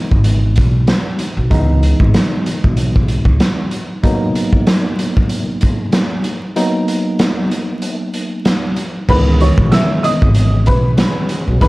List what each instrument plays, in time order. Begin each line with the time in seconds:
Already playing: tine electric piano C#2 E3 G#3 B3 D#4
0.12 upright bass G#1, kick
0.24 closed hi-hat
0.56 upright bass B1, kick, closed hi-hat
0.87 snare, closed hi-hat
1.19 closed hi-hat
1.37 upright bass B1
1.50 tine electric piano C#2 E3 G#3 B3 D#4, upright bass C#2, kick, closed hi-hat
1.83 closed hi-hat
2.00 upright bass G#1, kick
2.14 snare, closed hi-hat
2.46 closed hi-hat
2.64 upright bass B1, kick
2.77 closed hi-hat
2.96 kick
3.08 closed hi-hat
3.25 upright bass C#2, kick
3.40 snare, closed hi-hat
3.71 closed hi-hat
4.03 tine electric piano F#3 A#3 B3 D#4, kick, closed hi-hat
4.35 closed hi-hat
4.53 kick
4.67 snare, closed hi-hat
4.99 closed hi-hat
5.17 kick
5.29 closed hi-hat
5.61 kick, closed hi-hat
5.92 snare, closed hi-hat
6.24 closed hi-hat
6.56 tine electric piano F#3 A#3 B3 D#4, closed hi-hat
6.88 closed hi-hat
7.19 snare, closed hi-hat
7.51 closed hi-hat
7.82 closed hi-hat
8.13 closed hi-hat
8.45 snare, closed hi-hat
8.76 closed hi-hat
9.08 tine electric piano C#2 D#3 E3 G#3 B3, upright bass C#2, tonewheel organ B2 C#3 G#3 B3 C#4, upright piano B4 B5, kick, crash
9.40 upright piano C#5 C#6, closed hi-hat
9.58 upright bass B1, kick
9.72 upright piano E5 E6, snare, closed hi-hat
10.03 upright piano D#5 D#6, closed hi-hat
10.22 upright bass G#1, kick
10.34 closed hi-hat
10.66 upright bass B1, upright piano B4 B5, kick, closed hi-hat
10.98 snare, closed hi-hat
11.29 closed hi-hat
11.48 upright bass B1
11.61 tine electric piano C#2 D#3 E3 G#3 B3, upright bass C#2, upright piano B4 B5, kick, closed hi-hat